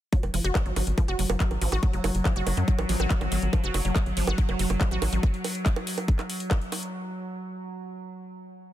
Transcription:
0.13 0.19 F#3 medium
0.13 6.98 F#3 medium
0.13 kick loud
0.13 closed hi-hat medium
0.23 0.30 F#1 medium
0.23 closed hi-hat soft
0.23 high bongo soft
0.34 0.40 F#1 loud
0.34 0.40 F3 medium
0.34 open hi-hat loud
0.44 0.51 F#1 medium
0.44 0.54 F#4 loud
0.44 closed hi-hat medium
0.55 0.64 F#3 medium
0.55 kick loud
0.55 clap loud
0.55 closed hi-hat medium
0.55 high bongo medium
0.66 0.72 G#1 medium
0.66 0.72 F#3 medium
0.66 closed hi-hat soft
0.76 0.83 G#1 loud
0.76 0.83 F#3 medium
0.76 open hi-hat loud
0.76 high bongo soft
0.87 0.94 G#1 medium
0.87 closed hi-hat medium
0.98 1.04 F3 medium
0.98 kick loud
0.98 closed hi-hat medium
0.98 high bongo soft
1.08 1.15 F#1 medium
1.08 1.17 F#4 loud
1.08 closed hi-hat soft
1.19 1.26 F#1 loud
1.19 1.28 F#3 medium
1.19 open hi-hat loud
1.30 1.36 F#1 medium
1.30 1.36 F#3 medium
1.30 closed hi-hat medium
1.30 high bongo medium
1.40 1.46 F#3 medium
1.40 kick loud
1.40 clap loud
1.40 closed hi-hat medium
1.51 1.57 A1 medium
1.51 closed hi-hat soft
1.51 high bongo soft
1.62 1.68 A1 loud
1.62 1.68 F3 medium
1.62 open hi-hat loud
1.72 1.79 A1 medium
1.72 1.81 F#4 loud
1.72 closed hi-hat medium
1.72 high bongo soft
1.83 1.92 F#3 medium
1.83 kick loud
1.83 closed hi-hat medium
1.93 2.00 F#1 medium
1.93 2.00 F#3 medium
1.93 closed hi-hat soft
2.04 2.11 F#1 loud
2.04 2.10 F#3 medium
2.04 open hi-hat loud
2.04 high bongo medium
2.15 2.21 F#1 medium
2.15 closed hi-hat medium
2.25 2.31 F3 medium
2.25 kick loud
2.25 clap loud
2.25 closed hi-hat medium
2.25 high bongo soft
2.36 2.43 F#1 medium
2.36 2.45 F#4 loud
2.36 closed hi-hat soft
2.47 2.53 F#1 loud
2.47 2.56 F#3 medium
2.47 open hi-hat loud
2.47 high bongo soft
2.57 2.64 F#2 medium
2.57 2.63 F#3 medium
2.57 closed hi-hat medium
2.68 2.74 F#3 medium
2.68 kick loud
2.68 closed hi-hat medium
2.79 2.85 A1 medium
2.79 closed hi-hat soft
2.79 high bongo medium
2.89 2.96 A1 loud
2.89 2.95 F3 medium
2.89 open hi-hat loud
3.00 3.06 A1 medium
3.00 3.09 F#4 loud
3.00 closed hi-hat medium
3.00 high bongo soft
3.10 3.20 F#3 medium
3.10 kick loud
3.10 clap loud
3.10 closed hi-hat medium
3.21 3.28 G#1 medium
3.21 3.27 F#3 medium
3.21 closed hi-hat soft
3.21 high bongo soft
3.32 3.38 G#1 loud
3.32 3.38 F#3 medium
3.32 open hi-hat loud
3.42 3.49 G#1 medium
3.42 closed hi-hat medium
3.53 3.59 F3 medium
3.53 kick loud
3.53 closed hi-hat soft
3.53 high bongo medium
3.64 3.70 F#1 medium
3.64 3.73 F#4 loud
3.64 closed hi-hat soft
3.74 3.81 F#1 loud
3.74 3.83 F#3 medium
3.74 open hi-hat loud
3.74 high bongo soft
3.85 3.91 F#1 medium
3.85 3.91 F#3 medium
3.85 closed hi-hat soft
3.96 4.02 F#3 medium
3.96 kick loud
3.96 clap loud
3.96 closed hi-hat medium
3.96 high bongo soft
4.06 4.13 G#1 medium
4.06 closed hi-hat soft
4.17 4.23 G#1 loud
4.17 4.23 F3 medium
4.17 open hi-hat loud
4.27 4.34 G#1 medium
4.27 4.37 F#4 loud
4.27 closed hi-hat medium
4.27 high bongo medium
4.38 4.47 F#3 medium
4.38 kick loud
4.38 closed hi-hat medium
4.49 4.55 F#1 medium
4.49 4.55 F#3 medium
4.49 closed hi-hat soft
4.49 high bongo soft
4.59 4.66 F#1 loud
4.59 4.65 F#3 medium
4.59 open hi-hat loud
4.70 4.77 F#1 loud
4.70 closed hi-hat medium
4.70 high bongo soft
4.81 4.87 F3 medium
4.81 kick loud
4.81 clap loud
4.81 closed hi-hat medium
4.91 4.98 A1 medium
4.91 5.00 F#4 loud
4.91 closed hi-hat soft
5.02 5.09 A1 loud
5.02 5.11 F#3 medium
5.02 open hi-hat loud
5.02 high bongo medium
5.13 5.19 A1 medium
5.13 5.19 F#3 medium
5.13 closed hi-hat medium
5.23 kick loud
5.23 closed hi-hat medium
5.23 high bongo soft
5.34 closed hi-hat soft
5.44 open hi-hat loud
5.44 high bongo soft
5.55 closed hi-hat soft
5.66 kick loud
5.66 clap loud
5.66 closed hi-hat medium
5.76 closed hi-hat soft
5.76 high bongo medium
5.87 open hi-hat loud
5.98 closed hi-hat medium
5.98 high bongo soft
6.08 kick loud
6.08 closed hi-hat medium
6.19 clap soft
6.19 closed hi-hat soft
6.19 high bongo soft
6.30 open hi-hat loud
6.40 closed hi-hat soft
6.51 kick loud
6.51 clap loud
6.51 closed hi-hat medium
6.51 high bongo medium
6.62 closed hi-hat soft
6.72 open hi-hat loud
6.72 high bongo soft
6.83 closed hi-hat soft

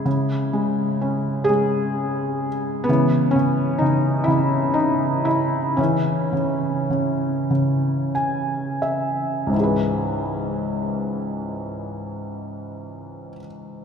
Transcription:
0.00 1.44 E4 medium
0.00 1.43 G#4 medium
0.05 2.84 C#3 medium
0.53 1.48 G#3 soft
1.01 2.84 C#4 soft
1.44 2.48 G#4 medium
1.49 2.85 G#3 soft
2.84 3.34 B3 medium
2.89 3.34 C#3 medium
2.89 4.24 E3 medium
3.31 3.81 C#4 medium
3.36 3.80 C#3 medium
3.78 4.26 C#3 soft
3.78 4.28 D#4 medium
4.24 4.75 E4 medium
4.28 5.74 C#3 soft
4.74 5.26 D#4 medium
5.25 5.79 E4 medium
5.77 6.31 C#3 medium
5.77 8.12 E3 soft
5.77 8.10 C#4 medium
6.33 6.89 C#3 soft
6.90 7.49 C#3 soft
7.51 9.50 C#3 soft
8.15 8.78 G#5 soft
8.82 9.50 E5 soft
9.47 13.28 C#2 soft
9.47 13.31 G#2 soft
9.53 13.34 E3 soft
9.53 13.38 C#4 soft
9.60 13.41 G#4 soft
9.60 13.45 B4 soft

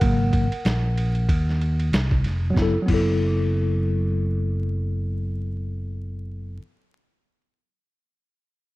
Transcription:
0.00 0.49 G#1 medium
0.00 0.45 C#3 medium
0.00 0.46 F#3 medium
0.00 0.46 A#3 medium
0.00 1.89 A#4 medium
0.00 1.88 F#5 medium
0.00 kick loud
0.00 ride medium
0.33 kick medium
0.33 ride medium
0.52 muted fretless electric bass stroke soft
0.52 ride soft
0.65 1.26 A#1 medium
0.65 snare medium
0.65 hi-hat pedal soft
0.65 ride medium
0.98 ride medium
1.15 ride soft
1.29 1.89 D#2 medium
1.29 kick medium
1.29 ride medium
1.49 snare soft
1.61 ride soft
1.79 ride soft
1.92 2.23 C2 medium
1.92 snare loud
1.92 hi-hat pedal soft
1.92 ride medium
2.11 kick medium
2.24 2.55 F1 medium
2.24 snare soft
2.24 ride soft
2.50 2.73 F#3 medium
2.50 2.75 B3 medium
2.56 2.76 F#1 medium
2.56 2.77 E4 medium
2.56 kick medium
2.56 snare medium
2.62 2.79 A4 medium
2.82 6.55 F#3 medium
2.82 6.57 B3 medium
2.88 6.58 F#1 medium
2.88 6.59 E4 medium
2.88 kick medium
2.88 crash medium
2.94 6.61 A4 medium

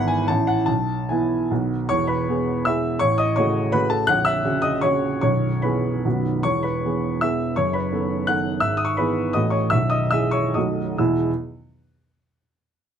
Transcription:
0.00 0.29 G#1 medium
0.00 0.24 E3 medium
0.00 0.24 B3 medium
0.00 0.25 E4 medium
0.00 0.29 F#5 loud
0.00 0.30 B5 medium
0.08 0.27 G#5 medium
0.28 0.66 A1 medium
0.28 0.64 E3 soft
0.28 0.64 C#4 soft
0.28 0.64 E4 soft
0.28 0.47 A5 medium
0.47 0.67 F#5 medium
0.66 1.08 B1 medium
0.66 1.09 A5 medium
1.09 1.48 E3 soft
1.09 1.48 B3 soft
1.09 1.48 E4 soft
1.09 1.51 G#5 medium
1.51 1.90 B1 medium
1.51 1.87 D#3 soft
1.51 1.87 B3 soft
1.51 1.87 F#4 soft
1.89 2.99 E1 soft
1.89 2.98 E2 medium
1.89 2.08 C#5 medium
1.89 2.09 C#6 medium
2.07 2.62 B4 medium
2.07 2.66 B5 medium
2.29 2.63 E3 soft
2.29 2.63 B3 soft
2.29 2.63 G#4 soft
2.65 2.98 E3 soft
2.65 2.99 B3 soft
2.65 2.99 G#4 soft
2.65 2.99 E5 medium
2.65 3.01 E6 medium
2.99 4.04 A1 medium
2.99 4.04 A2 soft
2.99 3.17 C#5 medium
2.99 3.18 C#6 loud
3.18 3.36 D#5 medium
3.18 3.37 D#6 medium
3.36 3.70 C#3 soft
3.36 3.70 A3 soft
3.36 3.70 F#4 medium
3.36 3.71 C#5 medium
3.36 3.73 C#6 medium
3.72 4.04 C#3 soft
3.72 4.04 A3 soft
3.72 4.05 F#4 soft
3.72 3.89 B4 medium
3.72 3.90 B5 medium
3.90 4.06 A4 medium
3.90 4.07 A5 medium
4.07 5.20 A#0 medium
4.07 5.20 A#1 medium
4.07 4.24 F#5 medium
4.07 4.25 F#6 loud
4.25 4.61 E5 medium
4.25 4.63 E6 medium
4.44 4.79 C#3 soft
4.44 4.79 C#4 soft
4.44 4.79 F#4 soft
4.62 4.81 D#5 medium
4.62 4.82 D#6 medium
4.81 5.19 C#3 soft
4.81 5.19 C#4 soft
4.81 5.19 F#4 soft
4.81 5.20 C#5 medium
4.81 5.20 C#6 medium
5.21 6.03 B0 soft
5.21 6.03 B1 medium
5.21 5.61 C#5 medium
5.21 5.63 C#6 medium
5.62 6.01 E3 soft
5.62 6.01 B3 soft
5.62 6.02 G#4 soft
5.62 6.21 B4 soft
5.62 6.24 B5 medium
6.05 6.44 B0 soft
6.05 6.43 B1 soft
6.05 6.41 D#3 soft
6.05 6.41 B3 soft
6.05 6.41 F#4 soft
6.43 7.53 E1 soft
6.43 7.53 E2 soft
6.43 6.63 C#5 medium
6.43 6.63 C#6 medium
6.63 7.17 B4 soft
6.63 7.21 B5 medium
6.84 7.18 E3 soft
6.84 7.18 B3 soft
6.84 7.19 G#4 soft
7.21 7.53 E3 soft
7.21 7.53 B3 soft
7.21 7.54 G#4 soft
7.21 7.54 E5 medium
7.21 7.56 E6 medium
7.56 8.59 F#1 soft
7.56 8.59 F#2 soft
7.56 7.73 C#5 medium
7.56 7.74 C#6 medium
7.73 8.25 B4 soft
7.73 8.27 B5 medium
7.92 8.24 D#3 soft
7.92 8.24 B3 soft
7.92 8.25 A4 soft
8.27 8.59 D#3 soft
8.27 8.59 B3 soft
8.27 8.59 A4 soft
8.27 8.60 F#5 medium
8.27 8.62 F#6 medium
8.60 9.33 G#1 soft
8.60 9.33 G#2 soft
8.60 8.78 E5 medium
8.60 8.79 E6 medium
8.77 8.84 D#6 medium
8.85 8.97 C#6 medium
8.97 9.32 E3 soft
8.97 9.32 B3 soft
8.97 9.32 G#4 soft
8.97 9.33 B4 medium
8.97 9.35 B5 medium
9.33 9.71 A1 soft
9.33 9.71 A2 medium
9.33 9.68 E3 soft
9.33 9.68 A3 soft
9.33 9.69 F#4 soft
9.33 9.52 D#5 medium
9.33 9.53 D#6 medium
9.50 9.70 C#5 medium
9.50 9.71 C#6 medium
9.70 10.53 B0 medium
9.70 10.53 B1 medium
9.70 9.90 E5 medium
9.70 9.91 E6 medium
9.90 10.11 D#5 medium
9.90 10.12 D#6 medium
10.11 10.51 E3 soft
10.11 10.52 G#3 soft
10.11 10.52 G#4 soft
10.11 10.32 E5 medium
10.11 10.33 E6 medium
10.31 10.54 C#5 medium
10.31 10.54 C#6 medium
10.54 10.98 B0 soft
10.54 10.98 B1 medium
10.54 10.96 F#3 soft
10.54 10.96 A3 soft
10.54 10.96 F#4 soft
10.54 10.96 D#5 soft
10.54 10.99 D#6 medium
10.98 11.21 E2 medium
10.98 11.21 B2 soft
10.98 11.21 G#3 soft
10.98 11.22 B3 medium
10.98 11.22 E4 medium
10.98 11.22 G#4 medium
10.98 11.21 E6 soft

